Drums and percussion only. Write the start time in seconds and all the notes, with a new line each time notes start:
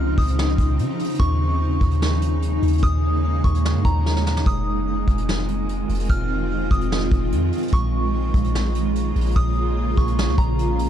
0.18 kick, closed hi-hat, open hi-hat
0.28 closed hi-hat
0.39 snare
0.58 kick, closed hi-hat
0.79 closed hi-hat
0.99 closed hi-hat
1.04 closed hi-hat
1.09 closed hi-hat
1.14 closed hi-hat
1.19 kick, closed hi-hat
1.81 kick, closed hi-hat
1.91 closed hi-hat
2.02 snare
2.22 closed hi-hat
2.42 closed hi-hat
2.62 closed hi-hat
2.68 closed hi-hat
2.73 closed hi-hat
2.78 closed hi-hat
2.83 kick, closed hi-hat
3.44 kick, closed hi-hat
3.54 closed hi-hat
3.65 snare
3.85 kick, closed hi-hat
4.06 snare
4.16 snare
4.27 snare
4.37 snare
4.46 kick, closed hi-hat
5.07 kick, closed hi-hat
5.18 closed hi-hat
5.29 snare
5.48 closed hi-hat
5.69 closed hi-hat
5.89 closed hi-hat
5.94 closed hi-hat
5.99 closed hi-hat
6.04 closed hi-hat
6.10 kick, closed hi-hat
6.71 kick, closed hi-hat
6.81 closed hi-hat
6.92 snare
7.11 kick, closed hi-hat
7.32 closed hi-hat
7.52 closed hi-hat
7.58 closed hi-hat
7.63 closed hi-hat
7.68 closed hi-hat
7.73 kick, closed hi-hat
8.34 kick, closed hi-hat
8.44 closed hi-hat
8.55 snare
8.75 closed hi-hat
8.95 closed hi-hat
9.16 closed hi-hat
9.21 closed hi-hat
9.26 closed hi-hat
9.31 closed hi-hat
9.36 kick, closed hi-hat
9.97 kick, closed hi-hat
10.08 closed hi-hat
10.19 snare
10.38 kick, closed hi-hat
10.59 closed hi-hat
10.79 closed hi-hat
10.84 closed hi-hat